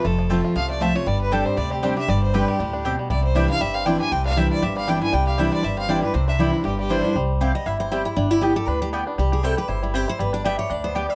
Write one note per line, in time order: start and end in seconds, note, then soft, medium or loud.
0.00 0.28 A3 medium
0.00 0.69 C4 medium
0.00 0.16 G4 medium
0.05 0.40 F1 medium
0.05 0.54 F2 medium
0.05 0.42 F4 medium
0.05 0.31 A4 medium
0.19 0.53 F3 medium
0.30 0.55 F3 loud
0.30 0.67 A3 medium
0.30 0.55 A3 loud
0.30 0.40 C4 loud
0.30 0.55 C4 loud
0.30 0.40 F4 loud
0.30 0.55 F4 loud
0.30 0.40 C5 loud
0.30 0.41 A5 loud
0.45 0.79 F4 medium
0.56 0.91 C2 medium
0.56 1.04 C3 medium
0.56 0.93 F3 medium
0.56 0.69 F5 loud
0.70 0.94 A3 medium
0.70 0.84 D5 medium
0.80 0.94 F3 medium
0.80 0.95 A3 medium
0.80 0.91 C4 medium
0.80 0.95 C4 medium
0.80 0.91 F4 loud
0.80 1.07 F4 medium
0.80 0.94 F4 loud
0.80 0.91 C5 loud
0.80 0.97 E5 loud
0.80 0.92 A5 loud
0.95 1.06 A3 medium
0.95 1.07 C4 medium
0.95 1.06 F4 medium
0.95 1.09 C#5 medium
1.06 1.42 G1 loud
1.06 1.55 G2 medium
1.06 1.57 G3 medium
1.06 1.21 D5 medium
1.21 1.34 B4 loud
1.31 1.56 G3 loud
1.31 1.56 C4 loud
1.31 1.42 C4 loud
1.31 1.74 D4 medium
1.31 1.57 D4 loud
1.31 1.42 G4 medium
1.31 1.57 G4 loud
1.31 1.47 A4 medium
1.31 1.42 D5 medium
1.31 1.42 G5 loud
1.45 1.71 C4 medium
1.45 1.59 C5 medium
1.57 1.93 D2 medium
1.57 2.06 C3 medium
1.57 2.08 G3 medium
1.57 1.72 D5 loud
1.71 2.34 C4 medium
1.71 1.85 G4 medium
1.83 1.96 G3 medium
1.83 1.93 C4 medium
1.83 1.97 C4 medium
1.83 2.37 D4 medium
1.83 1.97 D4 medium
1.83 1.93 G4 loud
1.83 1.96 G4 loud
1.83 1.97 C5 medium
1.83 1.93 D5 loud
1.83 1.93 G5 loud
1.97 2.09 D4 soft
1.97 2.48 G4 medium
1.97 2.08 G4 medium
1.97 2.11 E5 loud
2.08 2.44 G1 loud
2.08 2.57 G2 loud
2.08 2.59 G3 medium
2.08 2.22 D5 medium
2.23 2.36 C5 medium
2.34 2.58 G3 loud
2.34 2.44 C4 medium
2.34 2.76 C4 medium
2.34 2.59 C4 medium
2.34 2.59 D4 medium
2.34 2.44 G4 loud
2.34 2.59 G4 loud
2.34 2.50 B4 medium
2.34 2.44 D5 loud
2.34 2.44 G5 loud
2.48 2.85 G4 medium
2.59 2.95 D2 medium
2.59 2.84 A2 medium
2.59 2.99 G3 medium
2.73 3.35 D4 medium
2.85 3.09 B2 medium
2.85 2.95 C4 medium
2.85 4.00 G4 medium
2.85 2.95 G4 loud
2.85 2.95 D5 loud
2.85 2.95 G5 medium
2.99 3.10 G3 medium
3.10 3.45 C2 loud
3.10 3.59 C3 medium
3.10 3.60 G3 medium
3.10 3.23 D5 medium
3.24 3.37 C5 medium
3.35 3.49 E3 loud
3.35 3.49 G3 loud
3.35 3.45 C4 medium
3.35 3.78 D4 medium
3.35 3.49 D4 medium
3.35 3.46 E4 medium
3.35 3.48 E4 loud
3.35 3.46 D5 medium
3.35 3.49 E5 medium
3.35 3.46 G5 loud
3.49 3.75 C4 medium
3.49 3.61 D4 soft
3.49 3.60 E4 medium
3.49 3.63 F5 loud
3.61 3.96 G1 medium
3.61 4.09 G2 medium
3.61 4.37 G3 medium
3.61 3.76 E5 loud
3.74 4.11 C4 medium
3.74 3.87 F5 loud
3.86 4.00 E3 medium
3.86 4.00 G3 medium
3.86 3.96 C4 loud
3.86 4.25 D4 medium
3.86 4.00 D4 medium
3.86 3.96 E4 medium
3.86 3.98 E4 loud
3.86 3.96 D5 loud
3.86 3.99 G5 loud
3.86 3.96 G5 loud
3.99 4.12 D4 soft
3.99 4.11 E4 medium
3.99 4.62 G4 medium
3.99 4.13 G#5 loud
4.12 4.47 C2 loud
4.12 4.60 C3 medium
4.12 4.51 C4 medium
4.12 4.25 G5 loud
4.26 4.87 D4 medium
4.26 4.39 F5 loud
4.36 4.61 E3 loud
4.36 4.61 G3 loud
4.36 4.76 G3 medium
4.36 4.47 C4 medium
4.36 4.61 D4 loud
4.36 4.47 E4 loud
4.36 4.62 E4 loud
4.36 4.47 D5 medium
4.36 4.50 E5 loud
4.36 4.47 G5 loud
4.51 4.91 C4 medium
4.51 4.64 D5 loud
4.62 4.98 G1 medium
4.62 5.11 G2 loud
4.62 5.27 G4 medium
4.62 4.77 E5 medium
4.77 5.12 G3 medium
4.77 4.90 F5 loud
4.87 5.01 E3 medium
4.87 5.01 G3 medium
4.87 4.97 C4 loud
4.87 5.24 D4 medium
4.87 5.02 D4 loud
4.87 4.98 E4 loud
4.87 5.00 E4 loud
4.87 4.98 D5 loud
4.87 4.98 G5 loud
4.87 5.02 G5 medium
5.01 5.36 D3 medium
5.01 5.13 D4 soft
5.01 5.12 E4 medium
5.01 5.15 G#5 loud
5.13 5.48 C2 medium
5.13 5.61 C3 medium
5.13 5.63 G3 medium
5.13 5.27 G5 loud
5.27 6.02 G4 medium
5.27 5.41 F5 medium
5.38 5.63 E3 medium
5.38 5.63 G3 loud
5.38 5.48 C4 medium
5.38 5.75 D4 medium
5.38 5.63 D4 loud
5.38 5.48 E4 medium
5.38 5.63 E4 loud
5.38 5.48 D5 loud
5.38 5.53 E5 loud
5.38 5.49 G5 loud
5.52 5.77 C4 medium
5.52 5.66 D5 loud
5.63 5.99 G1 medium
5.63 6.12 G2 medium
5.63 6.39 G3 medium
5.63 5.78 E5 medium
5.77 6.13 C4 medium
5.77 5.91 F5 loud
5.89 6.02 E3 medium
5.89 6.02 G3 loud
5.89 5.99 C4 medium
5.89 6.25 D4 medium
5.89 6.02 D4 medium
5.89 5.99 E4 loud
5.89 6.01 E4 loud
5.89 6.02 D5 medium
5.89 5.99 D5 medium
5.89 5.99 G5 loud
6.02 6.14 D4 medium
6.02 6.14 E4 medium
6.02 6.37 G4 medium
6.02 6.16 B4 medium
6.14 6.50 C2 loud
6.14 6.63 C3 medium
6.14 6.51 C4 medium
6.14 6.28 C5 medium
6.28 6.63 D4 medium
6.28 6.35 E5 loud
6.39 6.53 E3 loud
6.39 6.53 G3 medium
6.39 6.76 G3 medium
6.39 6.49 C4 medium
6.39 6.52 D4 loud
6.39 6.63 E4 medium
6.39 6.50 E4 medium
6.39 6.51 E4 loud
6.39 6.50 D5 loud
6.39 6.50 G5 loud
6.52 6.88 C4 medium
6.52 6.65 D4 medium
6.52 6.64 E4 medium
6.64 7.00 G1 medium
6.64 7.13 G2 medium
6.64 6.78 G4 medium
6.64 7.02 G4 medium
6.79 7.13 G3 medium
6.79 6.92 G4 medium
6.89 7.03 E3 medium
6.89 7.04 G3 medium
6.89 7.00 C4 medium
6.89 7.04 D4 loud
6.89 7.16 D4 medium
6.89 7.00 E4 medium
6.89 7.03 E4 medium
6.89 7.16 C5 loud
6.89 7.00 D5 medium
6.89 7.01 G5 medium
7.04 7.16 D3 medium
7.04 7.16 D4 soft
7.04 7.15 E4 medium
7.15 7.51 C2 medium
7.15 7.54 G3 medium
7.41 7.51 C4 loud
7.41 7.51 E4 medium
7.41 8.30 G4 medium
7.41 7.51 C5 loud
7.41 7.55 F5 medium
7.41 7.51 G5 loud
7.55 7.91 G3 medium
7.55 7.66 D#5 medium
7.66 8.01 G1 medium
7.66 8.03 E4 medium
7.66 7.79 E5 loud
7.80 8.15 C4 medium
7.80 7.91 C5 medium
7.92 8.16 G3 medium
7.92 8.01 C4 medium
7.92 8.02 E4 loud
7.92 8.05 G4 medium
7.92 8.02 C5 loud
7.92 8.02 G5 loud
8.05 8.16 E4 medium
8.05 8.17 E4 medium
8.16 8.52 G1 loud
8.16 8.42 G3 medium
8.16 8.31 D4 medium
8.31 8.42 E4 medium
8.31 8.56 G4 medium
8.41 8.81 G3 medium
8.41 8.52 B3 medium
8.41 8.55 G4 medium
8.41 8.52 G4 medium
8.41 8.52 D5 loud
8.41 8.53 G5 loud
8.56 9.32 G4 medium
8.56 8.68 A4 loud
8.67 9.02 D2 medium
8.67 9.04 D4 medium
8.67 8.81 B4 medium
8.82 9.18 G3 medium
8.82 8.89 G4 medium
8.93 9.03 B3 medium
8.93 9.18 B3 medium
8.93 9.03 G4 medium
8.93 9.03 D5 loud
8.93 9.03 G5 loud
9.07 9.18 D4 medium
9.18 9.53 C2 medium
9.18 9.43 G3 medium
9.18 9.32 G4 medium
9.32 9.57 G4 medium
9.32 9.44 G#4 medium
9.43 9.82 G3 medium
9.43 9.53 C4 medium
9.43 9.53 E4 medium
9.43 9.58 A4 medium
9.43 9.54 C5 loud
9.43 9.54 G5 loud
9.57 10.58 G4 medium
9.57 9.69 B4 medium
9.69 10.04 G1 medium
9.69 10.05 E4 medium
9.69 9.82 C5 loud
9.83 10.19 G3 medium
9.83 9.95 E4 medium
9.94 10.04 C4 loud
9.94 10.19 C4 medium
9.94 10.04 E4 loud
9.94 10.08 G4 medium
9.94 10.04 C5 loud
9.94 10.04 G5 loud
10.08 10.19 E4 medium
10.08 10.20 C5 loud
10.19 10.55 G1 medium
10.19 10.44 G3 medium
10.19 10.33 B4 medium
10.33 10.68 D4 medium
10.33 10.45 D5 loud
10.44 11.09 G3 medium
10.44 10.55 B3 loud
10.44 10.55 G4 medium
10.44 10.55 D5 medium
10.44 10.58 E5 loud
10.44 10.55 G5 loud
10.59 10.95 G4 medium
10.59 10.70 C#5 loud
10.70 11.06 D2 medium
10.70 11.06 D4 medium
10.70 10.84 D5 medium
10.84 11.15 B3 medium
10.84 10.95 C5 medium
10.95 11.05 B3 medium
10.95 11.05 G4 loud
10.95 11.15 G4 medium
10.95 11.05 D5 loud
10.95 11.10 D5 medium
10.95 11.05 G5 loud
11.09 11.15 G3 medium
11.09 11.15 E5 medium